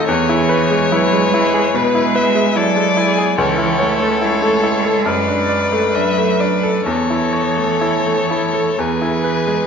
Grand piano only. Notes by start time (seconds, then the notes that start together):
Already playing: A3 D#4 A4
0.08 E2
0.29 E4
0.49 B4
0.71 G#3
0.92 E4
1.13 G#3
1.34 E4
1.54 G#4
1.74 B2
1.95 E4
2.15 B4
2.35 G#3
2.56 E4
2.76 G#3
2.97 E4
3.18 G#4
3.38 C#2
3.58 E4
3.79 C#5
4.00 A3
4.21 E4
4.42 A3
4.63 E4
4.85 A4
5.06 F#2
5.28 D4
5.49 D5
5.72 A3
5.95 D4
6.18 A3
6.40 D4
6.63 A4
6.86 E2
7.10 E4
7.33 C#5
7.57 A3
7.81 E4
8.06 A3
8.31 E4
8.53 A4
8.79 E2
9.02 E4
9.24 B4
9.47 G#3